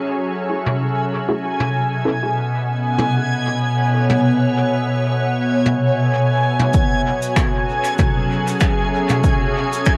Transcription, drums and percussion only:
0.66 mid tom
1.60 mid tom
2.98 mid tom
4.10 mid tom
5.66 mid tom
6.59 mid tom
6.73 kick, cabasa
7.22 cabasa
7.36 finger snap, kick, cabasa
7.85 cabasa
7.98 kick, mid tom, cabasa
8.48 cabasa
8.61 finger snap, kick, cabasa
9.10 mid tom, cabasa
9.24 kick, cabasa
9.73 cabasa
9.86 finger snap, kick, cabasa

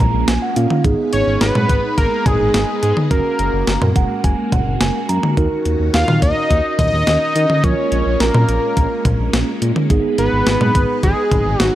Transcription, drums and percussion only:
0.00 kick, closed hi-hat
0.28 snare, closed hi-hat
0.56 closed hi-hat
0.70 mid tom
0.84 kick, closed hi-hat
1.13 closed hi-hat
1.41 snare, closed hi-hat
1.55 mid tom
1.69 kick, closed hi-hat
1.98 kick, closed hi-hat
2.26 kick, closed hi-hat, mid tom
2.54 snare, closed hi-hat
2.83 closed hi-hat
2.97 mid tom
3.11 kick, closed hi-hat
3.39 closed hi-hat
3.67 snare, closed hi-hat
3.82 mid tom
3.96 kick, closed hi-hat
4.24 kick, closed hi-hat
4.52 kick, closed hi-hat, mid tom
4.81 snare, closed hi-hat
5.09 closed hi-hat
5.23 mid tom
5.37 kick, closed hi-hat
5.65 closed hi-hat
5.94 snare, closed hi-hat
6.08 mid tom
6.22 kick, closed hi-hat
6.51 kick, closed hi-hat
6.79 kick, closed hi-hat, mid tom
7.07 snare, closed hi-hat
7.36 closed hi-hat
7.50 mid tom
7.64 kick, closed hi-hat
7.92 closed hi-hat
8.20 snare, closed hi-hat
8.34 mid tom
8.49 closed hi-hat
8.77 kick, closed hi-hat
9.05 kick, closed hi-hat, mid tom
9.33 snare, closed hi-hat
9.62 closed hi-hat
9.76 mid tom
9.90 kick, closed hi-hat
10.18 closed hi-hat
10.47 snare, closed hi-hat
10.61 mid tom
10.75 kick, closed hi-hat
11.03 kick, closed hi-hat
11.31 kick, closed hi-hat, mid tom
11.60 snare, closed hi-hat

